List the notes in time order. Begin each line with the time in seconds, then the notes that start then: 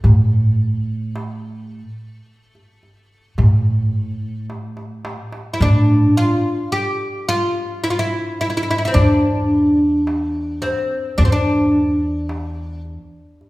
Already playing: A3
0.04 A2, darbuka dum
0.60 darbuka ka
1.16 darbuka tek
1.71 darbuka ka
2.55 darbuka ka
2.83 darbuka ka
3.38 A2, darbuka dum
3.94 darbuka ka
4.50 darbuka tek
4.77 darbuka ka
5.05 darbuka tek
5.33 darbuka ka
5.54 E4
5.60 A2 D4, darbuka dum
6.17 F4
6.72 G4
7.29 F4
7.84 E4, darbuka ka
7.90 F4
7.99 E4
8.41 E4
8.50 E4
8.57 E4
8.63 E4
8.71 E4
8.78 E4
8.85 C4 E4
8.94 E2 D4, darbuka dum
9.51 darbuka ka
10.07 darbuka tek
10.62 C4, darbuka tek
11.18 E2 D4, darbuka dum
11.25 C4
11.32 D4
11.74 darbuka ka
12.29 darbuka tek
12.85 darbuka ka
13.41 darbuka ka